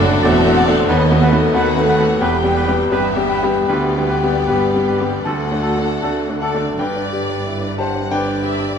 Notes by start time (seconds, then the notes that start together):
Already playing: F#1 D2 F#2 A2 A3 D4 F#4 A4 D5
0.04 A3 D4 F#4
0.22 E1 E2 A3 C4 D4 F#4 A4 D5 E5 F#5
0.46 A3 D4 F#4
0.54 A4 D5 F#5
0.68 A3 D4 F#4
0.86 D#2 B3 A4 B4 D#5 F#5
1.10 A3 B3 F#4
1.21 A3 A4 B4 F#5
1.32 A3 B3 F#4
1.52 D#2 D#3 A3 B3 F#4 A4 B4 F#5
1.75 A3 B3 F#4
1.85 F#4 A4 B4 F#5
1.98 A3 B3 F#4
2.19 E1 E2 G3 G4 B4 G5
2.43 G3 B3 G4
2.54 G4 B4 G5
2.68 G3 B3 G4
2.90 G1 G2 G3 B3 G4 B4 E5 G5
3.16 G3 B3 G4
3.28 G4 B4 G5
3.43 G3 B3 G4
3.67 D2 B3 G4 B4 D5 G5
3.97 G3 B3 G4
4.08 G4 B4 G5
4.23 G3 B3 G4
4.48 G1 G2 G3 B3 G4 B4 G5
4.74 G3 B3 G4
4.87 G4 B4 G5
5.01 G3 B3 G4
5.25 D2 A3 F#4 A4 F#5 A5
5.52 A3 D4 F#4
5.63 F#4 A4 A5
5.77 A3 D4 F#4
6.02 D2 D3 A3 D4 F#4 A4 A5
6.29 A3 D4 F#4
6.41 F#4 A4 D5 F#5 A5
6.54 A3 D4 F#4
6.78 G1 G2 B4 D5 G5
6.96 D4
7.13 G4
7.29 D4
7.46 E4
7.62 D4
7.78 G4 C5 F#5 A5
7.95 D4
8.10 D3 B4 D5 G5
8.28 D4
8.42 G4 E5
8.60 D4
8.75 D5